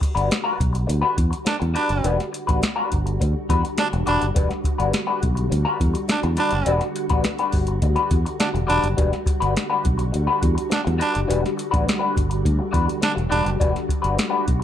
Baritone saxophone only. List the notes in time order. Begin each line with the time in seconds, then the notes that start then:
1.47 D4
1.75 D4
3.79 D4
4.08 D4
6.11 D4
6.40 D4
8.40 D4
8.69 D4
10.72 D4
11.02 D4
13.03 D4
13.31 D4